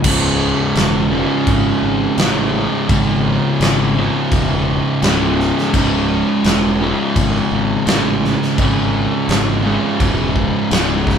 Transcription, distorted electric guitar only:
0.04 C#2 G#2 C#3
1.11 C#2 G#2 C#3
2.18 C#2 G#2 C#3
2.89 C#2 G#2 C#3
3.95 C#2 G#2 C#3
5.02 C#2 G#2 C#3
5.73 C#2 G#2 C#3
6.80 C#2 G#2 C#3
7.86 C#2 G#2 C#3
8.57 C#2 G#2 C#3
9.63 C#2 G#2 C#3
10.71 C#2 G#2 C#3

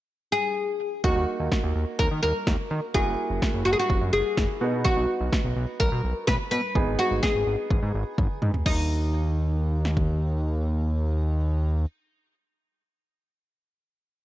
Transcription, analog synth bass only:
1.04 D#2
1.16 D#2
1.40 D#2
1.64 D#2
1.75 D#2
1.99 D#2
2.11 D#3
2.23 D#2
2.47 D#2
2.71 D#3
2.94 F#1
3.07 F#1
3.30 F#1
3.54 F#1
3.66 F#1
3.90 F#1
4.02 F#2
4.13 F#1
4.37 F#1
4.61 B2
4.97 B1
5.21 B1
5.44 B1
5.56 B1
5.80 B1
5.92 B2
6.04 B1
6.28 B1
6.52 B2
6.75 G#1
6.87 G#1
7.11 G#1
7.35 G#1
7.47 G#1
7.70 G#1
7.83 G#2
7.95 G#1
8.18 G#1
8.42 G#2
8.66 D#2

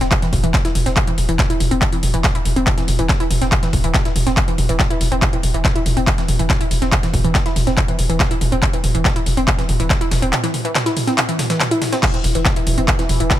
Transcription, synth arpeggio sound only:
0.01 C4
0.22 E3
0.44 E3
0.65 E4
0.86 C4
1.07 E3
1.29 E3
1.50 E4
1.71 C4
1.93 E3
2.14 E3
2.35 E4
2.56 C4
2.78 E3
2.99 E3
3.20 E4
3.42 C4
3.63 E3
3.84 E3
4.05 E4
4.27 C4
4.48 E3
4.69 E3
4.90 E4
5.12 C4
5.33 E3
5.54 E3
5.76 E4
5.97 C4
6.18 E3
6.39 E3
6.61 E4
6.82 C4
7.03 E3
7.25 E3
7.46 E4
7.67 C4
7.88 E3
8.10 E3
8.31 E4
8.52 C4
8.73 E3
8.95 E3
9.16 E4
9.37 C4
9.59 E3
9.80 E3
10.01 E4
10.22 C4
10.44 E3
10.65 E3
10.86 E4
11.07 C4
11.29 E3
11.50 E3
11.71 E4
11.93 C4
12.14 E3
12.35 E3
12.56 E4
12.78 C4
12.99 E3
13.20 E3

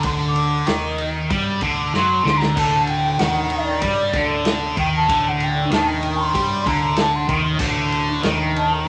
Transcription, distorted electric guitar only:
0.05 D3
0.67 D#3
1.31 G3
1.62 D3
1.94 F#3
2.24 D3
2.56 D3
3.19 D#3
3.82 G3
4.14 D3
4.77 D#3
5.08 D3
5.70 D#3
6.33 G3
6.66 D3
7.28 D#3
7.60 D3
8.23 D#3

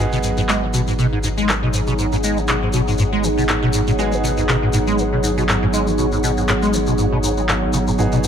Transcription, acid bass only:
0.13 B2
0.24 G#2
0.38 G#2
0.49 G#3
0.63 D#3
0.74 B2
0.88 G#2
0.99 B2
1.13 G#2
1.24 G#2
1.38 G#3
1.49 D#3
1.63 B2
1.74 G#2
1.88 B2
1.99 G#2
2.13 G#2
2.24 G#3
2.38 D#3
2.49 B2
2.63 G#2
2.74 B2
2.88 G#2
2.99 G#2
3.13 G#3
3.24 D#3
3.38 B2
3.49 G#2
3.63 B2
3.74 G#2
3.88 G#2
3.99 G#3
4.13 D#3
4.24 B2
4.38 G#2
4.49 B2
4.63 G#2
4.74 G#2
4.87 G#3
4.99 D#3
5.12 B2
5.24 G#2
5.37 B2
5.49 G#2
5.62 G#2
5.74 G#3
5.87 D#3
5.99 B2
6.12 G#2
6.23 B2
6.37 G#2
6.48 G#2
6.62 G#3
6.73 D#3
6.87 B2
6.98 G#2
7.12 B2
7.24 G#2
7.37 G#3
7.49 G#2
7.62 G#1
7.74 C#3
7.88 G#2
7.99 G#2
8.13 B2
8.24 G#2

